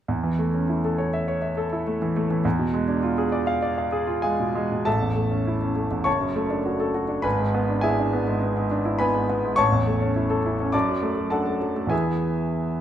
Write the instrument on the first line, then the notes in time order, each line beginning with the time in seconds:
grand piano
0.08 E2
0.24 E3
0.39 A3
0.54 C#4
0.69 E4
0.85 A4
0.98 C#5
1.13 E5
1.28 C#5
1.42 E5
1.57 A4
1.73 E4
1.87 A3
2.02 E3
2.16 A3
2.30 E3
2.45 E2
2.59 B2
2.74 G#3
2.88 D4
3.03 F4
3.18 G#4
3.32 D5
3.47 F5
3.62 D5
3.78 F5
3.92 G#4
4.07 F4
4.22 G#3 G#4 F5 G#5
4.40 B2
4.55 G#3
4.72 B2
4.85 A1 A4 E5 A5
5.02 E2
5.16 A3
5.31 C#4
5.47 E4
5.62 C#4
5.76 A3
5.91 E2
6.04 F#1 C#5 A5 C#6
6.20 F#2
6.36 A3
6.50 D4
6.65 F#4
6.80 A4
6.94 F#4
7.08 D4
7.22 G#1 B4 G#5 B5
7.39 G#2
7.55 B3
7.70 D4
7.81 E4 G#4 E5 G#5
7.99 D4
8.13 B3
8.28 G#2
8.42 B3
8.57 G#2
8.71 D4
8.85 E4
8.99 B3 B4 G#5 B5
9.15 G#2
9.30 B3
9.43 G#2
9.56 A1 C#5 A5 C#6
9.72 E2
9.87 A3
10.02 C#4
10.16 E4
10.30 A4
10.46 E4
10.60 C#4
10.72 F#2 D5 A5 D6
10.89 F#3
11.03 A3
11.17 F#3
11.30 D4 A4 F#5 A5
11.47 A3
11.61 F#3
11.76 A3
11.87 E2 E3 B3 E4 G#4 E5 G#5